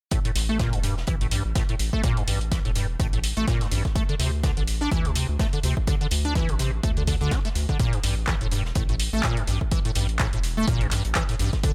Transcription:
0.11 acid bass A2, kick, closed hi-hat
0.25 acid bass A2, closed hi-hat
0.35 analog synth bass A1, snare, closed hi-hat, open hi-hat
0.49 acid bass A3
0.59 acid bass A#2, kick, snare, closed hi-hat
0.73 analog synth bass E1, acid bass G2, closed hi-hat
0.83 acid bass G2, closed hi-hat, open hi-hat
0.97 snare
1.07 analog synth bass A1, acid bass E3, kick, closed hi-hat
1.21 acid bass A2, closed hi-hat
1.31 acid bass G2, closed hi-hat, open hi-hat
1.45 analog synth bass A1
1.55 acid bass A2, kick, snare, closed hi-hat
1.69 acid bass A2, closed hi-hat
1.79 analog synth bass A1, closed hi-hat, open hi-hat
1.93 acid bass A3, kick
2.03 acid bass A#2, kick, closed hi-hat
2.17 acid bass G2, closed hi-hat
2.27 analog synth bass A1, acid bass G2, closed hi-hat, open hi-hat
2.41 closed hi-hat
2.52 acid bass E3, kick, snare, closed hi-hat
2.65 analog synth bass E1, acid bass A2, closed hi-hat
2.75 acid bass G2, closed hi-hat, open hi-hat
3.00 analog synth bass A1, acid bass A2, kick, closed hi-hat
3.13 acid bass A2, closed hi-hat
3.23 closed hi-hat, open hi-hat
3.36 analog synth bass A1, acid bass A3, closed hi-hat
3.47 acid bass A#2, kick, snare, closed hi-hat
3.61 acid bass G2, snare, closed hi-hat
3.71 analog synth bass A1, acid bass G2, closed hi-hat, open hi-hat
3.85 kick, snare, closed hi-hat
3.96 acid bass A3, kick, closed hi-hat
4.09 acid bass D3, closed hi-hat
4.19 analog synth bass D2, acid bass C3, snare, closed hi-hat, open hi-hat
4.43 acid bass D3, kick, snare, closed hi-hat
4.57 analog synth bass A1, acid bass D3, closed hi-hat
4.68 closed hi-hat, open hi-hat
4.81 acid bass D4, snare
4.91 analog synth bass D2, acid bass E3, kick, closed hi-hat
5.05 acid bass C3, closed hi-hat
5.15 acid bass C3, closed hi-hat, open hi-hat
5.29 analog synth bass D2
5.39 acid bass A3, kick, snare, closed hi-hat
5.53 acid bass D3, closed hi-hat
5.63 analog synth bass D2, acid bass C3, closed hi-hat, open hi-hat
5.77 kick
5.87 acid bass D3, kick, closed hi-hat
6.01 acid bass D3, closed hi-hat
6.11 analog synth bass D2, closed hi-hat, open hi-hat
6.25 acid bass D4, closed hi-hat
6.35 acid bass E3, kick, snare, closed hi-hat
6.49 analog synth bass A1, acid bass C3, closed hi-hat
6.59 acid bass C3, closed hi-hat, open hi-hat
6.83 analog synth bass D2, acid bass A3, kick, closed hi-hat
6.97 acid bass D3, closed hi-hat
7.07 acid bass D3, kick, closed hi-hat, open hi-hat
7.21 analog synth bass D2, acid bass D3, closed hi-hat
7.31 acid bass D4, kick, snare, closed hi-hat
7.45 acid bass A3, snare, closed hi-hat
7.55 analog synth bass D2, closed hi-hat, open hi-hat
7.68 acid bass D3, kick, snare, closed hi-hat
7.79 acid bass A#2, kick, closed hi-hat
7.93 acid bass G2, closed hi-hat
8.03 analog synth bass A1, acid bass G2, snare, closed hi-hat, open hi-hat
8.27 acid bass E3, kick, snare, clap, closed hi-hat
8.41 analog synth bass E1, acid bass A2, closed hi-hat
8.52 acid bass G2, closed hi-hat, open hi-hat
8.65 snare
8.75 analog synth bass A1, acid bass A2, kick, closed hi-hat
8.89 acid bass A2, closed hi-hat
9.00 closed hi-hat, open hi-hat
9.13 analog synth bass A1, acid bass A3
9.23 acid bass A#2, kick, snare, clap, closed hi-hat
9.37 acid bass G2, closed hi-hat
9.47 analog synth bass A1, acid bass G2, closed hi-hat, open hi-hat
9.61 kick
9.71 acid bass E3, kick, closed hi-hat
9.85 acid bass A2, closed hi-hat
9.95 analog synth bass A1, acid bass G2, closed hi-hat, open hi-hat
10.09 closed hi-hat
10.19 acid bass A2, kick, snare, clap, closed hi-hat
10.33 analog synth bass E1, acid bass A2, closed hi-hat
10.44 closed hi-hat, open hi-hat
10.57 acid bass A3
10.68 analog synth bass A1, acid bass A#2, kick, closed hi-hat
10.81 acid bass G2, closed hi-hat
10.91 acid bass G2, clap, closed hi-hat, open hi-hat
11.04 analog synth bass A1, closed hi-hat
11.15 acid bass E3, kick, snare, clap, closed hi-hat
11.29 acid bass A2, snare, closed hi-hat
11.39 analog synth bass A1, acid bass G2, closed hi-hat, open hi-hat
11.53 kick, snare, closed hi-hat
11.63 acid bass D3, kick, closed hi-hat

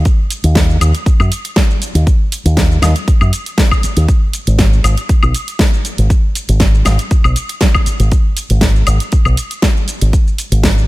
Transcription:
0.05 kick, closed hi-hat, shaker
0.31 open hi-hat, shaker
0.44 fingered electric bass D#2, closed hi-hat, shaker
0.55 kick, snare, closed hi-hat, shaker
0.70 shaker
0.81 fingered electric bass D#2, open hi-hat, high woodblock, shaker
0.95 closed hi-hat, shaker
1.06 muted fingered electric bass stroke, kick, closed hi-hat, shaker
1.20 fingered electric bass F#2, high woodblock, shaker
1.32 open hi-hat, shaker
1.45 closed hi-hat, shaker
1.56 kick, snare, closed hi-hat, shaker
1.71 shaker
1.82 open hi-hat, shaker
1.95 fingered electric bass D#2, closed hi-hat, shaker
2.07 kick, closed hi-hat, shaker
2.32 open hi-hat, shaker
2.45 fingered electric bass D#2, closed hi-hat, shaker
2.57 kick, snare, closed hi-hat, shaker
2.72 shaker
2.82 fingered electric bass D#2, snare, open hi-hat, high woodblock, shaker
2.96 closed hi-hat, shaker
3.08 kick, closed hi-hat, shaker
3.21 fingered electric bass F#2, high woodblock, shaker
3.33 open hi-hat, shaker
3.46 closed hi-hat, shaker
3.58 kick, snare, closed hi-hat, shaker
3.71 kick, high woodblock, shaker
3.83 muted fingered electric bass stroke, open hi-hat, shaker
3.96 fingered electric bass D#2, closed hi-hat, shaker
4.08 kick, closed hi-hat, shaker
4.33 open hi-hat, shaker
4.47 fingered electric bass G#1, closed hi-hat, shaker
4.59 kick, snare, closed hi-hat, shaker
4.73 shaker
4.84 fingered electric bass G#1, open hi-hat, high woodblock, shaker
4.98 closed hi-hat, shaker
5.09 muted fingered electric bass stroke, kick, closed hi-hat, shaker
5.23 fingered electric bass B1, high woodblock, shaker
5.35 open hi-hat, shaker
5.48 closed hi-hat, shaker
5.59 kick, snare, closed hi-hat, shaker
5.74 shaker
5.85 open hi-hat, shaker
5.98 fingered electric bass G#1, closed hi-hat, shaker
6.10 kick, closed hi-hat, shaker
6.35 open hi-hat, shaker
6.49 fingered electric bass G#1, closed hi-hat, shaker
6.60 kick, snare, closed hi-hat, shaker
6.75 shaker
6.85 fingered electric bass G#1, snare, open hi-hat, high woodblock, shaker
6.99 closed hi-hat, shaker
7.11 kick, closed hi-hat, shaker
7.24 fingered electric bass B1, high woodblock, shaker
7.36 open hi-hat, shaker
7.49 closed hi-hat, shaker
7.61 kick, snare, closed hi-hat, shaker
7.75 kick, high woodblock, shaker
7.86 muted fingered electric bass stroke, open hi-hat, shaker
7.99 fingered electric bass G#1, closed hi-hat, shaker
8.12 kick, closed hi-hat, shaker
8.37 open hi-hat, shaker
8.50 fingered electric bass G#1, closed hi-hat, shaker
8.61 kick, snare, closed hi-hat, shaker
8.76 shaker
8.87 fingered electric bass G#1, open hi-hat, high woodblock, shaker
9.00 closed hi-hat, shaker
9.12 muted fingered electric bass stroke, kick, closed hi-hat, shaker
9.25 fingered electric bass B1, high woodblock, shaker
9.37 open hi-hat, shaker
9.51 closed hi-hat, shaker
9.62 kick, snare, closed hi-hat, shaker
9.77 shaker
9.88 open hi-hat, shaker
10.01 fingered electric bass G#1, closed hi-hat, shaker
10.13 kick, closed hi-hat, shaker
10.27 shaker
10.38 open hi-hat, shaker
10.51 fingered electric bass G#1, closed hi-hat, shaker
10.63 kick, snare, closed hi-hat, shaker
10.78 shaker

